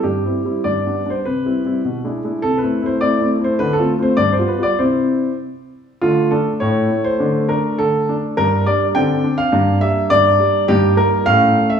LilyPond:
<<
  \new Staff \with { instrumentName = "Grand piano" } { \time 2/4 \key c \major \tempo 4 = 102 << { g'4 d''8. c''16 | b'2 | a'16 b'8 c''16 d''8. c''16 | b'16 a'8 c''16 d''16 c''16 b'16 d''16 |
c''4. r8 | \key d \minor f'8 a'8 cis''8. c''16~ | c''8 bes'8 a'4 | bes'8 d''8 g''8. f''16~ |
f''8 e''8 d''4 | g'8 bes'8 f''8. e''16 | } \\ { r2 | r2 | r2 | r2 |
r2 | a4 <a e'>4 | <a d'>2 | <g d'>4 <c' d'>4 |
<bes d'>2 | <bes ees'>4 <a cis'>4 | } >> }
  \new Staff \with { instrumentName = "Grand piano" } { \time 2/4 \key c \major \tuplet 3/2 { g,8 <g c' e'>8 <g c' e'>8 g,8 <g b d'>8 <g b d'>8 } | \tuplet 3/2 { c8 <g c' e'>8 <g c' e'>8 b,8 <gis d' e'>8 <gis d' e'>8 } | \tuplet 3/2 { c8 <a c' e'>8 <a c' e'>8 <a c' e'>8 <a c' e'>8 <a c' e'>8 } | \tuplet 3/2 { d8 <a c' f'>8 <a c' f'>8 g,8 <g b f'>8 <g b f'>8 } |
<c c' e'>4 r4 | \key d \minor d8 d'8 a,8 a8 | d8 d'8 d8 d'8 | g,8 g8 d8 d'8 |
g,8 g8 g,8 g8 | g,8 g8 a,8 a8 | }
>>